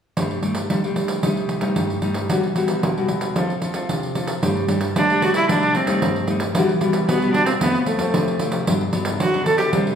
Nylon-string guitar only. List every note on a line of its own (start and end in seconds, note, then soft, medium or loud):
0.17 0.68 G2 medium
0.17 0.39 G3 soft
0.17 0.40 A3 medium
0.17 0.40 D4 medium
0.43 0.59 G3 medium
0.43 0.59 A3 soft
0.43 0.59 D4 medium
0.70 1.21 D3 medium
0.70 0.79 G3 medium
0.70 0.79 A3 medium
0.70 0.80 D4 medium
0.84 1.19 G3 medium
0.84 1.20 A3 medium
0.84 1.20 D4 medium
1.23 1.74 C3 medium
1.23 1.59 G3 medium
1.23 1.59 A3 soft
1.23 1.59 D#4 medium
1.61 1.98 G3 medium
1.61 1.98 A3 medium
1.61 1.98 D#4 medium
1.77 2.27 G2 medium
2.02 2.27 G3 soft
2.02 2.27 A3 soft
2.02 2.27 D#4 medium
2.30 2.81 E3 medium
2.30 2.46 G3 medium
2.30 2.46 B3 medium
2.30 2.46 F#4 medium
2.56 2.92 G3 medium
2.56 2.92 B3 soft
2.56 2.92 F#4 medium
2.84 3.34 B2 medium
2.98 3.33 G3 medium
2.98 3.33 B3 medium
2.98 3.33 F#4 medium
3.37 3.87 F3 medium
3.37 3.52 C4 medium
3.37 3.52 F4 medium
3.37 3.52 A4 medium
3.63 3.72 C4 medium
3.63 3.72 F4 soft
3.63 3.72 A4 medium
3.75 4.11 C4 medium
3.75 4.11 F4 medium
3.75 4.11 A4 medium
3.90 4.40 C3 medium
4.16 4.33 C4 medium
4.16 4.33 F4 medium
4.16 4.33 A4 medium
4.43 4.93 G2 medium
4.43 4.65 G3 medium
4.43 4.65 A3 medium
4.43 4.66 D4 medium
4.69 4.91 G3 medium
4.69 4.91 A3 medium
4.69 4.92 D4 medium
4.96 5.46 D3 medium
4.96 5.04 G3 soft
4.96 5.04 A3 medium
4.96 5.04 D4 medium
5.11 5.45 G3 medium
5.11 5.45 A3 medium
5.11 5.46 D4 medium
5.49 6.00 C3 medium
5.49 5.85 G3 medium
5.49 5.85 A3 medium
5.49 5.85 D#4 medium
5.87 6.24 G3 medium
5.87 6.24 A3 medium
5.87 6.24 D#4 medium
6.03 6.53 G2 medium
6.28 6.45 G3 medium
6.28 6.46 A3 medium
6.28 6.46 D#4 medium
6.56 7.06 E3 medium
6.56 6.71 G3 medium
6.56 6.71 B3 medium
6.56 6.72 F#4 medium
6.81 7.04 G3 medium
6.81 7.04 B3 medium
6.81 7.04 F#4 medium
7.08 7.59 B2 medium
7.08 7.17 G3 medium
7.08 7.17 B3 medium
7.08 7.18 F#4 medium
7.22 7.57 G3 medium
7.22 7.57 B3 medium
7.22 7.58 F#4 medium
7.62 8.12 F2 medium
7.62 7.97 F3 medium
7.62 7.97 A3 medium
7.62 7.97 C4 medium
7.99 8.35 F3 medium
7.99 8.36 A3 medium
7.99 8.36 C4 medium
8.14 8.64 C3 medium
8.40 8.65 F3 medium
8.40 8.65 A3 medium
8.40 8.65 C4 medium
8.67 9.18 G2 medium
8.67 8.83 F#3 medium
8.67 8.83 B3 medium
8.67 8.83 D4 medium
8.93 9.18 F#3 medium
8.93 9.18 B3 medium
8.93 9.19 D4 medium
9.20 9.71 D3 medium
9.34 9.69 F#3 medium
9.34 9.70 B3 medium
9.34 9.70 D4 medium
9.73 9.95 C3 medium
9.73 9.95 G3 medium
9.73 9.95 C4 medium
9.73 9.95 D4 medium